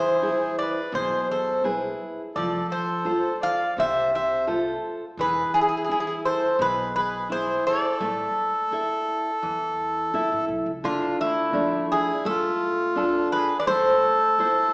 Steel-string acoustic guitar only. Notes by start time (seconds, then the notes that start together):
Already playing: E3
0.22 E4 G#4
0.92 B2
1.64 E4 G#4 B4
2.37 F3
3.05 F4 A4 C5
3.78 C3
4.47 F4 A4 C5
5.19 E3
5.89 E4
6.59 B2
7.30 E4
8.00 A3
8.72 E4 A4 E5
9.43 E3
10.14 E4 A4 E5
10.84 D3
11.53 F3 A3 D4
12.25 A3
12.96 D4 F4 A4
13.67 A3
14.39 E4 A4 C5